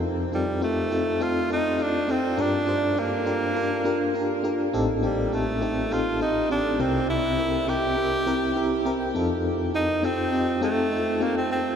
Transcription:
<<
  \new Staff \with { instrumentName = "FM electric piano" } { \time 4/4 \key f \mixolydian \tempo 4 = 102 << { r1 | r1 | r1 | r2 r8 e''8 g''16 g''8. |
r1 | } \\ { <c' ees' f' a'>8 <c' ees' f' a'>8 <c' ees' f' g'>8 <c' ees' f' a'>8 <c' ees' f' a'>8 <c' ees' f' a'>8 <c' ees' f' a'>8 <c' ees' f' a'>8 | <d' f' g' bes'>8 <d' f' g' c''>8 <d' f' g' a'>8 <d' f' g' bes'>8 <d' f' g' bes'>8 <d' f' g' bes'>8 <d' f' g' bes'>8 <d' f' g' bes'>8 | <c' ees' g' a'>8 <c' ees' g' a'>8 <c' ees' g' a'>8 <c' ees' g' a'>8 <c' ees' g' a'>8 <c' ees' g' a'>8 <c' ees' g' a'>8 <c' e' g' bes'>8~ | <c' e' g' bes'>8 <c' e' g' bes'>8 <c' e' g' bes'>8 <c' e' g' bes'>8 <c' e' g' bes'>8 <c' e' g' bes'>8 <c' e' g' bes'>8 <c' ees' f' a'>8~ |
<c' ees' f' a'>8 <c' ees' f' a'>8 <c' ees' f' a'>8 <c' ees' f' g'>8 <c' ees' f' a'>8 <c' ees' f' a'>8 <c' ees' f' a'>8 <c' ees' f' c''>8 | } >> }
  \new Staff \with { instrumentName = "FM electric piano" } { \clef bass \time 4/4 \key f \mixolydian f,2.~ f,8 r8 | g,1 | <a,, a,>2.~ <a,, a,>8 <c, c>8~ | <c, c>2.~ <c, c>8 f,8~ |
f,2.~ f,8 r8 | }
  \new Staff \with { instrumentName = "Tenor saxophone" } { \time 4/4 \key f \mixolydian r8 g8 a4 f'8 ees'8 d'8 c'8 | d'4 bes2~ bes8 r8 | r8 g8 a4 f'8 ees'8 d'8 c'8 | e'4 g'2~ g'8 r8 |
r8 ees'8 c'4 a4 bes16 c'16 c'8 | }
>>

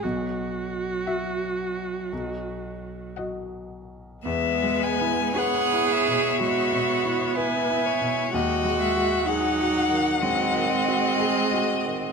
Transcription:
<<
  \new Staff \with { instrumentName = "Violin" } { \time 4/4 \key e \major \tempo 4 = 60 r4 fis''4 r4 fis''4 | e''8 gis''8 fis''8 e''4. gis''4 | fis''4 fis''4 dis''2 | }
  \new Staff \with { instrumentName = "Violin" } { \time 4/4 \key e \major r4 e''4 r4 dis''4 | b'4 cis''2 b'8 cis''8 | dis''8 e''8 fis''2 dis''4 | }
  \new Staff \with { instrumentName = "Cello" } { \time 4/4 \key e \major fis2. r4 | b4 gis'4 fis'4 e'4 | fis'4 dis'4 bis2 | }
  \new Staff \with { instrumentName = "Grand piano" } { \clef bass \time 4/4 \key e \major <b,, b,>4 <fis fis' e''>4 <b,, b,>4 <fis fis' dis''>4 | \tuplet 3/2 { e,8 gis8 e'8 b'8 e'8 b,8 gis8 b,8 e'8 b'8 e'8 b,8 } | \tuplet 3/2 { dis,8 gis8 fis'8 gis'8 fis'8 dis8 gis8 dis8 fis'8 gis'8 fis'8 dis8 } | }
  \new Staff \with { instrumentName = "Viola" } { \clef bass \time 4/4 \key e \major fis'2. r4 | gis4 b4 b2 | gis4 fis4 fis8 gis4. | }
>>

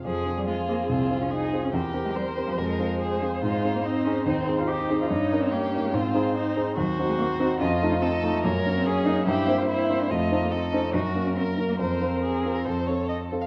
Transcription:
<<
  \new Staff \with { instrumentName = "Violin" } { \time 4/4 \key f \minor \tempo 4 = 143 aes'1 | bes'2 c''2~ | c''1 | des''2 c''2 |
\key f \phrygian c''2 ees''4 ees''4 | des''4 des''4 c''4 c''4 | ees''4 ees''4 bes'2 | bes'2 a'4. r8 | }
  \new Staff \with { instrumentName = "Violin" } { \time 4/4 \key f \minor aes'4 f'4 f'4 aes'4 | g'4 c''4 bes'4 aes'4 | f'4 ees'4 c'4 ees'4~ | ees'4 g'4 f'4 ees'4 |
\key f \phrygian ges'2 f'4 a'4 | bes'4 aes'4 g'4 e'4 | f'4 a'4 ges'4 bes'4 | c''4 aes'8. bes'16 c''8 des''8 ees''8. f''16 | }
  \new Staff \with { instrumentName = "Grand piano" } { \time 4/4 \key f \minor f,8 <c' f' aes'>4 <c' f' aes'>8 c,8 <c' f' aes'>4 <c' f' aes'>8 | e,8 <c' g' bes'>4 <c' g' bes'>8 f,8 <c' f' aes'>4 <c' f' aes'>8 | aes,8 <c' ees' aes'>4 <c' ees' aes'>8 ees,8 <c' ees' aes'>4 <c' ees' aes'>8 | g,8 <des' ees' bes'>4 <des' ees' bes'>8 aes,8 <c' ees' aes'>4 <c' ees' aes'>8 |
\key f \phrygian ees,8 <c' ees' ges'>4 <c' ees' ges'>8 f,8 <a ees' f'>4 <a ees' f'>8 | ges,8 <bes des' bes'>4 <bes des' bes'>8 g,8 <bes c' c''>4 <bes c' c''>8 | f,8 <a ees' c''>4 <a ees' c''>8 ges,8 <bes des' bes'>4 <bes des' bes'>8 | f,8 <c' f' bes'>4 <c' f' bes'>8 f,8 <c' f' a'>4 <c' f' a'>8 | }
  \new Staff \with { instrumentName = "Cello" } { \time 4/4 \key f \minor f8. g16 aes8 bes8 c'8. des'16 ees'8. des'16 | c'8. aes16 g8. f16 aes4. r8 | aes8. bes16 c'8 des'8 ees'8. f'16 g'8. f'16 | ees'8. c'16 bes8. aes16 c'4. r8 |
\key f \phrygian ges8. aes16 bes8 c'8 des'8. ees'16 c'8. a16 | bes8. c'16 des'8 ees'8 e'8. f'16 e'8. d'16 | a8. bes16 c'8 des'8 ees'8. des'16 c'8. bes16 | c'2.~ c'8 r8 | }
>>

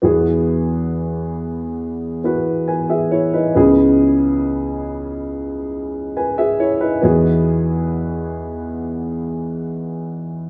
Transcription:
<<
  \new Staff \with { instrumentName = "Grand piano" } { \time 4/4 \key e \major \tempo 4 = 68 << { r2. <b' gis''>16 <gis' e''>16 <e' cis''>16 <dis' b'>16~ | <dis' b'>16 r2 r8. <b' gis''>16 <gis' e''>16 <e' cis''>16 <dis' b'>16~ | <dis' b'>16 r2. r8. | } \\ { <b e' fis' gis'>2~ <b e' fis' gis'>8 <b e' fis' b'>4. | <b cis' e' gis'>1 | <b e' fis' gis'>1 | } >> }
  \new Staff \with { instrumentName = "Grand piano" } { \clef bass \time 4/4 \key e \major <e, e>1 | <cis, cis>1 | <e, e>1 | }
>>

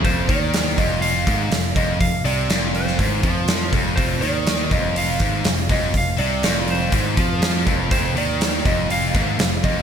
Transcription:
<<
  \new Staff \with { instrumentName = "Lead electric guitar" } { \time 4/4 \key c \dorian \tempo 4 = 122 c''8 d''4 ees''8 f''4. ees''8 | f''8 d''4 c''4. r4 | c''8 d''4 ees''8 f''4. ees''8 | f''8 d''4 c''4. r4 |
c''8 d''4 ees''8 f''4. ees''8 | }
  \new Staff \with { instrumentName = "Distorted electric guitar" } { \clef bass \time 4/4 \key c \dorian f,8 ees4 f,4 aes,8 f,8 f,8 | f,8 c8 f,4 aes,8 f4 f,8 | f,8 ees4 f,4 aes,8 f,8 f,8 | f,8 c8 f,4 aes,8 f4 f,8 |
f,8 ees4 f,4 aes,8 f,8 f,8 | }
  \new Staff \with { instrumentName = "Overdriven electric guitar" } { \clef bass \time 4/4 \key c \dorian f,8 ees4 f,4 aes,8 f,8 f,8 | f,8 c8 f,4 aes,8 f4 f,8 | f,8 ees4 f,4 aes,8 f,8 f,8 | f,8 c8 f,4 aes,8 f4 f,8 |
f,8 ees4 f,4 aes,8 f,8 f,8 | }
  \new Staff \with { instrumentName = "Picked electric bass" } { \clef bass \time 4/4 \key c \dorian f,,8 ees,4 f,,4 aes,,8 f,,8 f,,8 | f,,8 c,8 f,,4 aes,,8 f,4 f,,8 | f,,8 ees,4 f,,4 aes,,8 f,,8 f,,8 | f,,8 c,8 f,,4 aes,,8 f,4 f,,8 |
f,,8 ees,4 f,,4 aes,,8 f,,8 f,,8 | }
  \new DrumStaff \with { instrumentName = "Drums" } \drummode { \time 4/4 <hho bd>8 <hho bd>8 <hho sn>8 <hho bd>8 hho8 <hho bd>8 <hho sn>8 <hho bd>8 | <hho bd>8 hho8 <hho sn>8 hho16 sn16 <hho bd>8 <hho bd>8 <hho sn>8 <hho bd>8 | <hho bd>8 hho8 <hho sn>8 <hho bd>8 hho8 <hho bd>8 <hho sn>8 <hho bd>8 | <hho bd>8 hho8 <hho sn>8 hho8 <hho bd>8 <hho bd>8 <hho sn>8 <hho bd>8 |
<hho bd>8 hho8 <hho sn>8 <hho bd>8 hho8 <hho bd>8 <hho sn>8 <hho bd>8 | }
>>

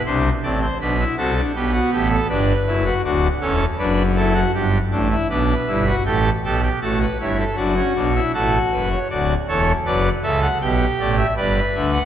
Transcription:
<<
  \new Staff \with { instrumentName = "Pipe organ" } { \time 4/4 \key d \mixolydian \tempo 4 = 80 << { c''8 d''16 c''16 b'8 a'8 g'16 fis'16 g'16 a'16 b'4 | fis'8 a'8 b'8 a'8 g'4 b'4 | a'8 g'8 a'16 b'16 cis''16 a'16 fis'4 a'8 b'16 cis''16 | \key d \major d''8 cis''8 d''8 e''16 fis''16 g''8 d''16 e''16 d''8 e''16 fis''16 | } \\ { d'8 c'8 d'16 e'16 fis'16 d'16 b4 d'8 e'16 fis'16 | d'8 cis'8 d'8 e'16 fis'16 r8 d'16 e'16 d'8 e'16 fis'16 | g'8 a'16 g'16 fis'8 e'8 d'16 cis'16 d'16 e'16 fis'4 | fis'8 a'8 b'8 a'8 g'4 b'4 | } >> }
  \new Staff \with { instrumentName = "Pipe organ" } { \clef bass \time 4/4 \key d \mixolydian <c, c>8 <a,, a,>8 <b,, b,>8 <c, c>8 <b,, b,>8 <a,, a,>8 <g,, g,>8 <fis,, fis,>8 | <d,, d,>8 <e,, e,>8 <fis,, fis,>4 <g,, g,>8 <a,, a,>8 <b,, b,>8 <g,, g,>8 | <a,, a,>8 <b,, b,>8 <a,, a,>8 <g,, g,>8 <fis,, fis,>8 <b,, b,>8 <a,, a,>8 <fis,, fis,>8 | \key d \major <d,, d,>8 <e,, e,>8 <fis,, fis,>8 <cis, cis>8 <b,, b,>8 <a,, a,>8 <g,, g,>8 <d, d>8 | }
>>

